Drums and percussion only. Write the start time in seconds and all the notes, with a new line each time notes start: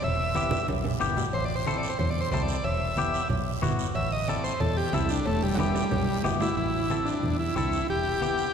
0.02 cowbell, high conga, low conga, long guiro
0.35 cowbell, high conga, short guiro
0.51 low conga, short guiro
0.68 cowbell, high conga, high timbale, long guiro
0.84 low conga, high timbale
1.01 cowbell, short guiro
1.17 low conga, low timbale, short guiro
1.33 cowbell, high conga, long guiro
1.66 cowbell, high conga, short guiro
1.83 short guiro
1.99 cowbell, high conga, low conga, long guiro
2.31 cowbell, high conga, low timbale, short guiro
2.48 short guiro
2.64 cowbell, high conga, long guiro
2.97 cowbell, high conga, short guiro
3.14 short guiro
3.29 cowbell, high conga, low conga, long guiro
3.63 cowbell, high conga, low conga, short guiro
3.79 short guiro
3.95 cowbell, high conga, long guiro
4.28 cowbell, high conga, short guiro
4.44 short guiro
4.60 cowbell, high conga, low conga, long guiro
4.93 cowbell, high conga, low timbale, short guiro
5.09 short guiro
5.26 cowbell, high conga, long guiro
5.59 cowbell, high conga, high timbale, short guiro
5.75 high timbale, short guiro
5.91 cowbell, high conga, low conga, high timbale, long guiro
6.24 cowbell, high conga, low timbale, short guiro
6.40 low timbale, short guiro
6.57 high conga, long guiro
6.90 high conga, short guiro
7.06 short guiro
7.23 high conga, low conga, long guiro
7.56 high conga, short guiro
7.72 short guiro
7.88 high conga, long guiro
8.22 high conga, short guiro
8.38 short guiro